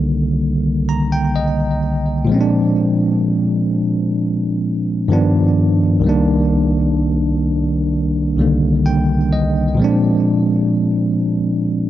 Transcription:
Already playing: C2 D3 D#3 G3 A#3
0.89 A#5
1.12 G5
1.36 D#5
2.25 A#2 F3
2.29 G#3 C4
2.34 C#4
2.41 D4
5.08 G2 D#3 F3 B3
5.13 D4
6.00 C2 D#3
6.04 G3 A#3
6.09 D4
8.37 C2 D#3 G3 A#3
8.42 D3
8.86 G5
9.33 D#5
9.75 A#2 F3
9.80 G#3 C4
9.84 D4

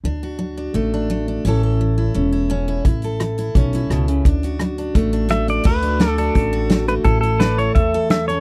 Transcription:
0.04 D2 D3 D4
0.23 F#4
0.39 F#3
0.57 D4
0.74 A1 A2 A3
0.94 D4
1.10 F#3 A3
1.28 D4
1.45 A1 A2 E3 C#4 E4 A4
1.63 A4
1.81 E3
1.98 E4
2.14 E1 A2 C#4
2.33 E4
2.50 E3 C#4
2.68 E4
2.85 A1 A2 E4, kick, closed hi-hat
3.02 A4, closed hi-hat
3.20 E3, cross-stick, closed hi-hat
3.38 E4, closed hi-hat
3.55 B1 A2 C#4, kick, closed hi-hat
3.73 E4, closed hi-hat
3.89 C#2 B2, cross-stick, closed hi-hat
4.08 C#3, closed hi-hat
4.25 D2 D3 D4, kick, closed hi-hat
4.43 F#4, closed hi-hat
4.59 F#3, cross-stick, closed hi-hat
4.78 D4, closed hi-hat
4.95 A1 A2 A3, kick, closed hi-hat
5.13 D4, closed hi-hat
5.29 F#3 A3 E5, cross-stick, closed hi-hat
5.48 D4 D5, closed hi-hat
5.64 D2 D3 F#4 B4, kick, crash
5.82 D4, closed hi-hat
6.00 F#3 F#4 A4 D5, snare, closed hi-hat
6.09 A4
6.18 D4 A4, closed hi-hat
6.35 A1 A2, kick, closed hi-hat
6.53 F#4
6.70 F#3, snare, closed hi-hat
6.88 A3 B4, closed hi-hat
7.04 A1 A2 E4 A4, kick, closed hi-hat
7.21 E4 A4, closed hi-hat
7.40 E3 A4 B4 D5, snare, closed hi-hat
7.58 E4 C#5, closed hi-hat
7.75 E2 A2 E5, kick, closed hi-hat
7.94 A4
8.10 E3 E5, snare, closed hi-hat
8.28 C#4 C#5, closed hi-hat

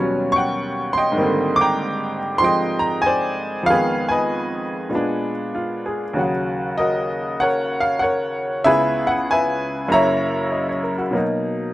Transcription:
Already playing: D#2 B2 F#3 G3 C#4 C#5
0.32 C#6
0.36 F#5 G5
0.93 C6
0.98 D#5 G5
1.12 G#2 D#3
1.17 G3 A#3 C4
1.23 D3
1.56 D6
1.61 G5 A#5
2.38 F3 G#3 C6
2.43 C4 D#5 G5
2.79 A#5
3.02 G#5
3.06 C5 D5
3.63 F2 D#3 F5
3.70 G#3 B3 G#4 B4
4.09 B4 D#5 G#5
4.90 A#2 G#3 B3
4.95 D4
5.55 F4
5.86 G#4
6.13 D#2 C#3 F#3
6.18 F#4
6.78 F#4 A#4 D#5
7.40 A#4 C#5 F#5
7.80 F5
7.99 A#4 C#5 F#5
8.64 C#2 C#3 B3 E4 G#4 B4 E5
9.07 F#5
9.31 B4 E5 G#5
9.88 F#2 C#3 A#3 E4 A#5
9.94 C#5 E5
10.52 D#5
10.69 C#5
10.83 A#4
10.98 F#4
11.11 B2 F#3 A#3
11.16 D#4

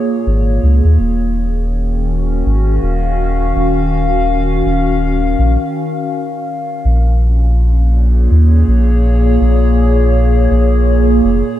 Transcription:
Already playing: A#2 A#3 G#4 C#5
0.26 G#1
0.63 C#2
0.84 D#2
0.99 D#1 D#3
1.29 C#4
1.44 F#4
2.24 F5
2.46 G#1
2.82 D#1
3.55 D#1
4.65 D#1
5.38 A#1
6.85 A#1 A#2
7.05 A#3
7.67 G#4 C#5
8.31 D#2
8.67 A#1
9.41 A#1
10.51 A#1
11.24 F1

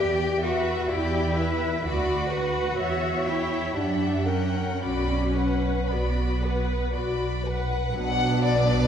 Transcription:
Already playing: E2 G4 G5
0.00 D5
0.42 F#4 B4 E5
0.89 E2 E4 G4 D5 G5
1.38 B4 E5
1.84 D2 F#4 D5 B5
2.31 B4 F#5
2.79 E2 C#5 E5
3.25 E4 C#5 E5 G5
3.75 F#2 D4 G4 E5 F#5
4.26 C#4 A#4 F#5 G5
4.82 B1 C#4 F#4 D5 B5
5.37 B4 F#5
5.90 B1 B3 F#4 D5 B5
6.41 B4
6.45 F#5
6.94 B1 F#4 D5 B5
7.44 B4 F#5
7.49 B4
7.94 B1 B2 F#3 B3 D4 B4 F#5
8.45 D5

